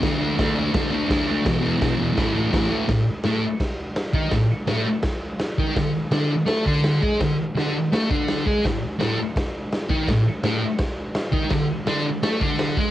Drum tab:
CC |x-x-x-x-|x-x-x-x-|x-x-x-x-|x-x-x-x-|
SD |o-o-o-o-|o-o-o-o-|o-o-o-o-|o-o-o-o-|
BD |o-o-o-o-|o-o-o-o-|o---o--o|o---o--o|

CC |x-x-x-x-|x-x-x-x-|x-x-x-x-|x-x-x-x-|
SD |o-o-o-o-|o-o-o-o-|o-o-o-o-|o-o-o-o-|
BD |o----o-o|o----o-o|o---o--o|o---o--o|

CC |x-x-x-x-|
SD |o-o-o-o-|
BD |o----o-o|